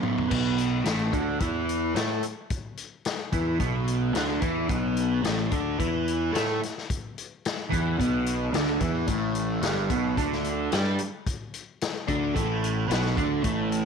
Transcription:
Already playing: distorted electric guitar F#3 C#4 F#4
0.02 distorted electric guitar B3, mid tom
0.18 floor tom
0.29 picked electric bass B1, distorted electric guitar B2 B3, kick, crash
0.58 closed hi-hat
0.84 picked electric bass A1, distorted electric guitar A2 A3, snare, closed hi-hat
1.13 picked electric bass D2, distorted electric guitar D3 D4, kick, closed hi-hat
1.40 picked electric bass E2, distorted electric guitar E3 E4, kick, closed hi-hat
1.69 closed hi-hat
1.94 picked electric bass A2, distorted electric guitar A3 A4, snare, closed hi-hat
2.23 closed hi-hat
2.50 kick, closed hi-hat
2.77 closed hi-hat
3.05 snare, closed hi-hat
3.32 picked electric bass E2, distorted electric guitar E3 E4, kick, closed hi-hat
3.59 picked electric bass B1, distorted electric guitar B2 B3, kick, closed hi-hat
3.87 closed hi-hat
4.13 picked electric bass D2, distorted electric guitar D3 D4, snare, closed hi-hat
4.41 picked electric bass E2, distorted electric guitar E3 E4, kick, closed hi-hat
4.69 picked electric bass B1, distorted electric guitar B2 B3, kick, closed hi-hat
4.97 closed hi-hat
5.22 picked electric bass A1, distorted electric guitar A2 A3, snare, closed hi-hat
5.51 picked electric bass D2, distorted electric guitar D3 D4, kick, closed hi-hat
5.79 picked electric bass E2, distorted electric guitar E3 E4, kick, closed hi-hat
6.08 closed hi-hat
6.32 picked electric bass A2, distorted electric guitar A3 A4, snare, closed hi-hat
6.63 snare, closed hi-hat
6.78 snare
6.90 kick, closed hi-hat
7.18 closed hi-hat
7.45 snare, closed hi-hat
7.69 picked electric bass E2, distorted electric guitar E3 E4, kick, closed hi-hat
7.98 picked electric bass B1, distorted electric guitar B2 B3, kick, closed hi-hat
8.26 closed hi-hat
8.52 picked electric bass D2, distorted electric guitar D3 D4, snare, closed hi-hat
8.80 picked electric bass E2, distorted electric guitar E3 E4, kick, closed hi-hat
9.07 picked electric bass A1, distorted electric guitar A2 A3, kick, closed hi-hat
9.35 closed hi-hat
9.62 picked electric bass G1, distorted electric guitar G2 G3, snare, closed hi-hat
9.90 picked electric bass B1, distorted electric guitar B2 B3, kick, closed hi-hat
10.17 picked electric bass D2, distorted electric guitar D3 D4, kick, closed hi-hat
10.32 snare
10.44 closed hi-hat
10.72 picked electric bass G2, distorted electric guitar G3 G4, snare, closed hi-hat
10.99 closed hi-hat
11.27 kick, closed hi-hat
11.54 closed hi-hat
11.81 snare, closed hi-hat
12.07 picked electric bass D2, distorted electric guitar D3 D4, kick, closed hi-hat
12.35 picked electric bass A1, distorted electric guitar A2 A3, kick, closed hi-hat
12.64 closed hi-hat
12.88 picked electric bass B1, distorted electric guitar B2 B3, snare, closed hi-hat
13.06 snare
13.17 picked electric bass D2, distorted electric guitar D3 D4, kick, closed hi-hat
13.43 picked electric bass A1, distorted electric guitar A2 A3, kick, closed hi-hat
13.72 closed hi-hat

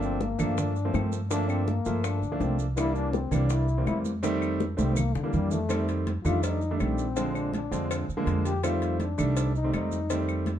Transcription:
Already playing: upright bass G1, grand piano F3 A3 A#3 D4
0.02 trombone C4, high bongo, high conga, maracas
0.21 trombone A#3, high bongo, high conga, maracas
0.39 upright bass G2, grand piano F3 A3 A#3 D4, low conga, claves, maracas
0.58 trombone D4, high bongo, high conga, low conga, maracas
0.76 high bongo, high conga, maracas
0.85 grand piano F3 A3 A#3 C4
0.94 upright bass G2, trombone C4, high bongo, low bongo, high conga, claves, maracas
1.13 high bongo, maracas
1.30 grand piano F3 A3 A#3 D4, trombone D4, high bongo, high conga, maracas
1.49 trombone C4, high bongo, high conga, claves, maracas
1.68 trombone A#3, high bongo, high conga, maracas
1.85 upright bass G2, grand piano F3 A3 A#3 F4, high conga, maracas
2.04 trombone D4, high bongo, high conga, claves, maracas
2.22 upright bass D2, high bongo, high conga, maracas
2.32 grand piano F3 A3 A#3 D4
2.40 upright bass C2, trombone C4, high bongo, low bongo, high conga, maracas
2.59 high bongo, high conga, maracas
2.77 grand piano E3 G3 A#3 D4, trombone E4, high bongo, high conga, claves, maracas
2.95 trombone D4, high bongo, high conga, maracas
3.13 trombone C4, high bongo, high conga, maracas
3.31 upright bass C2, grand piano E3 G3 A#3 D4, low conga, claves, maracas
3.50 trombone E4, high bongo, high conga, maracas
3.68 high bongo, high conga, maracas
3.78 grand piano E3 G3 A#3 C4
3.87 upright bass F2, trombone E4, high bongo, low bongo, high conga, claves, maracas
4.05 high bongo, high conga, maracas
4.23 grand piano D#3 G3 A3 C4, high bongo, maracas
4.42 high bongo, high conga, claves, maracas
4.60 high bongo, high conga, maracas
4.77 upright bass C2, grand piano D#3 G3 A3 C4, trombone C4, high bongo, high conga, maracas
4.96 trombone A#3, low conga, claves, maracas
5.14 upright bass E2, trombone D3, low bongo, maracas
5.23 grand piano E3 G3 A#3 D4
5.33 upright bass F2, trombone G3, low conga, maracas
5.51 trombone A3, low bongo, low conga, maracas
5.69 grand piano D#3 G3 A3 C4, cowbell, high conga, claves, maracas
5.88 cowbell, high conga, maracas
6.07 cowbell, high conga, maracas
6.24 upright bass F2, grand piano D#3 G3 A3 D4, trombone F4, low conga, claves, maracas
6.43 trombone D#4, cowbell, high conga, maracas
6.61 high conga, maracas
6.71 grand piano D#3 G3 A3 D4
6.80 upright bass A#1, trombone C4, cowbell, high conga, claves, maracas
6.98 maracas
7.16 grand piano D3 F3 G#3 C4, cowbell, maracas
7.35 trombone D4, high conga, claves, maracas
7.53 trombone D4, cowbell, high conga, maracas
7.71 upright bass F2, grand piano D3 F3 G#3 C4, cowbell, high conga, maracas
7.90 cowbell, high conga, claves, maracas
8.08 upright bass D#2, high conga, maracas
8.17 grand piano D3 F3 G#3 A#3
8.26 upright bass F2, cowbell, high conga, maracas
8.45 trombone G4, cowbell, high conga, maracas
8.63 grand piano D#3 G3 A3 C4, trombone F4, cowbell, high conga, claves, maracas
8.82 cowbell, high conga, maracas
9.00 trombone D4, cowbell, high conga, maracas
9.18 upright bass C2, grand piano D#3 G3 A3 D4, low conga, claves, maracas
9.36 cowbell, high conga, maracas
9.55 trombone D#4, high conga, maracas
9.64 grand piano D#3 G3 A3 C4
9.73 upright bass F2, trombone D#4, cowbell, high conga, claves, maracas
9.92 high conga, maracas
10.10 grand piano D#3 G3 A3 C4, cowbell, high conga, maracas
10.28 high conga, claves, maracas
10.46 cowbell, high conga, maracas

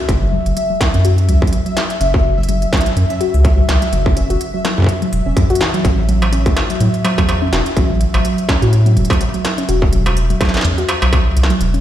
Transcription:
Already playing: synth texture E5
0.09 analog synth bass F#1, kick, closed hi-hat
0.22 synth pluck F#3
0.33 synth pluck F#3
0.46 analog synth bass F#1, closed hi-hat
0.57 synth pluck F#3, closed hi-hat
0.70 synth pluck F#3
0.81 kick, snare, closed hi-hat
0.94 analog synth bass F#2, synth pluck C#4, closed hi-hat
1.05 synth pluck F#4, closed hi-hat
1.18 closed hi-hat
1.28 analog synth bass C#2, synth pluck F#3, closed hi-hat
1.42 synth pluck F#3, kick
1.47 closed hi-hat
1.53 closed hi-hat
1.66 synth pluck F#3, closed hi-hat
1.77 synth pluck F#3, snare, closed hi-hat
1.90 closed hi-hat
2.01 analog synth bass F#1, synth pluck C#4, closed hi-hat
2.14 synth pluck F#4, kick
2.38 synth pluck F#3
2.43 closed hi-hat
2.49 synth pluck F#3, closed hi-hat
2.62 closed hi-hat
2.73 synth pluck F#3, kick, snare, closed hi-hat
2.77 closed hi-hat
2.81 closed hi-hat
2.86 synth pluck F#3, closed hi-hat
2.97 analog synth bass F#2, closed hi-hat
3.10 synth pluck C#4, closed hi-hat
3.21 synth pluck F#4, closed hi-hat
3.34 analog synth bass C#2, closed hi-hat
3.45 synth pluck F#3, kick, closed hi-hat
3.58 synth pluck F#3
3.69 analog synth bass C#2, snare, closed hi-hat
3.82 synth pluck F#3, closed hi-hat
3.93 analog synth bass F#1, synth pluck F#3, closed hi-hat
4.06 kick
4.17 synth pluck C#4, closed hi-hat
4.30 analog synth bass F#1, synth pluck F#4, closed hi-hat
4.41 closed hi-hat
4.54 synth pluck F#3
4.65 synth pluck F#3, snare, closed hi-hat
4.78 analog synth bass F#2, kick
4.80 kick
4.82 kick
4.84 kick
4.87 synth pluck F#3, kick, closed hi-hat
5.02 synth pluck F#3, closed hi-hat
5.13 analog synth bass E1, closed hi-hat
5.26 analog synth bass E1, synth pluck C#4
5.37 synth pluck F#2, kick, closed hi-hat
5.50 synth pluck F#4, closed hi-hat
5.55 closed hi-hat
5.61 synth pluck E3, snare
5.74 synth pluck F#3, closed hi-hat
5.85 analog synth bass A1, kick, closed hi-hat
5.98 synth pluck F#3
6.09 synth pluck F#3, closed hi-hat
6.22 closed hi-hat, struck metal
6.33 synth pluck C#4, closed hi-hat
6.46 synth pluck F#4, kick, closed hi-hat
6.57 snare, closed hi-hat, struck metal
6.70 synth pluck F#3, closed hi-hat
6.80 analog synth bass A2, synth pluck F#3, closed hi-hat
6.94 closed hi-hat
7.05 synth pluck F#3, closed hi-hat, struck metal
7.18 analog synth bass E2, synth pluck F#3, kick, closed hi-hat, struck metal
7.29 closed hi-hat, struck metal
7.42 synth pluck C#4
7.53 analog synth bass E1, synth pluck F#4, snare, closed hi-hat
7.66 closed hi-hat
7.77 analog synth bass A1, synth pluck F#3, kick, closed hi-hat
7.90 synth pluck F#3
8.01 closed hi-hat
8.14 analog synth bass A1, synth pluck F#3, closed hi-hat, struck metal
8.25 synth pluck F#3, closed hi-hat
8.38 closed hi-hat
8.49 synth pluck C#4, kick, snare, closed hi-hat, struck metal
8.62 analog synth bass A2, synth pluck F#4, closed hi-hat
8.73 closed hi-hat
8.86 synth pluck F#3, closed hi-hat
8.97 analog synth bass E1, synth pluck F#3, closed hi-hat
9.05 closed hi-hat
9.10 kick, closed hi-hat, struck metal
9.13 closed hi-hat
9.21 synth pluck F#3, closed hi-hat
9.34 synth pluck F#3, closed hi-hat
9.45 snare, closed hi-hat
9.58 synth pluck C#4, closed hi-hat
9.69 analog synth bass E1, synth pluck F#4, closed hi-hat
9.82 kick
9.93 synth pluck F#3, closed hi-hat
10.06 synth pluck F#3, closed hi-hat, struck metal
10.17 closed hi-hat
10.30 synth pluck F#3, closed hi-hat
10.41 synth pluck F#3, kick, snare, closed hi-hat, struck metal
10.45 snare
10.49 snare
10.54 snare, closed hi-hat
10.57 snare
10.61 analog synth bass E2, synth pluck C#4, snare, closed hi-hat
10.78 synth pluck F#4, closed hi-hat
10.89 closed hi-hat, struck metal
11.02 analog synth bass B1, synth pluck F#3, closed hi-hat, struck metal
11.13 synth pluck F#3, kick, closed hi-hat, struck metal
11.37 analog synth bass B1, synth pluck F#3, closed hi-hat
11.43 snare
11.50 synth pluck F#3, closed hi-hat
11.61 analog synth bass E1, closed hi-hat
11.74 synth pluck C#4, closed hi-hat

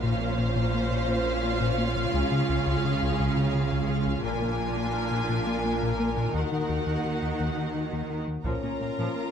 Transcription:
0.02 double bass section A#1, cello section A#2, analog synth bass A#2, viola section C#4 F4, violin section C5 F5
0.21 analog synth bass A#3
0.38 analog synth bass A#2
0.56 analog synth bass A#2
0.74 analog synth bass A#3
0.91 analog synth bass A#2
1.08 analog synth bass A#2
1.26 analog synth bass A#3
1.43 analog synth bass A#3
1.61 analog synth bass A#2
1.78 analog synth bass A#3
1.96 analog synth bass A#2
2.13 double bass section C#2, analog synth bass C#2, cello section C#3, violin section G#4
2.31 analog synth bass C#3
2.49 analog synth bass C#2
2.66 analog synth bass C#2
2.85 analog synth bass C#3
3.02 analog synth bass C#2
3.19 analog synth bass C#2
3.37 analog synth bass C#3
3.54 analog synth bass C#3
3.72 analog synth bass C#2
3.89 analog synth bass C#3
4.06 analog synth bass C#2
4.23 double bass section A#1, analog synth bass A#2, cello section A#2, viola section D4 F4, violin section A#4 G#5
4.41 analog synth bass A#3
4.59 analog synth bass A#2
4.76 analog synth bass A#2
4.94 analog synth bass A#3
5.11 analog synth bass A#2
5.29 analog synth bass A#2
5.47 analog synth bass A#3
5.65 analog synth bass A#3
5.82 analog synth bass A#2
5.99 analog synth bass A#3
6.17 analog synth bass A#2
6.34 analog synth bass D#2, double bass section D#2, cello section D#3, viola section D#4 F#4, violin section F#5
6.52 analog synth bass D#3
6.69 analog synth bass D#2
6.87 analog synth bass D#2
7.05 analog synth bass D#3
7.22 analog synth bass D#2
7.40 analog synth bass D#2
7.57 analog synth bass D#3
7.74 analog synth bass D#3
7.92 analog synth bass D#2
8.10 analog synth bass D#3
8.27 analog synth bass D#2
8.44 analog synth bass A#2, cello section A#2, viola section F3 F4, french horn section A#3 C#4, violin section A#4 A#5, taiko
8.62 cello section A#2, analog synth bass A#3, viola section C#4
8.80 cello section A#2, analog synth bass A#2, viola section A#3
8.98 cello section A#2, analog synth bass A#2, viola section F3
9.15 analog synth bass A#3

